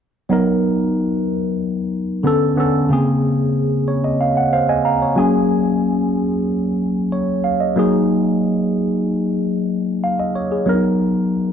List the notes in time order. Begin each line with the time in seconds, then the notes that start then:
0.29 F#3 B3 D#4 A#4
2.23 D3 B3 C#4 A4
2.56 D3 B3 C#4 A4
2.89 C#3 A#3 C4 G#4
3.88 C#5
4.04 D#5
4.21 F5
4.37 F#5
4.53 C5 F5
4.69 D#5 G#5
4.85 F5 A#5
5.02 C#5
5.16 F#3 A#3 C#4 G#4 G#5
7.12 C#5
7.44 F5
7.60 D#5
7.76 F#3 A#3 D#4 G#4
10.04 F5
10.20 D#5
10.35 C#5
10.52 G#4
10.66 F#3 B3 D4 A#4
10.74 D#4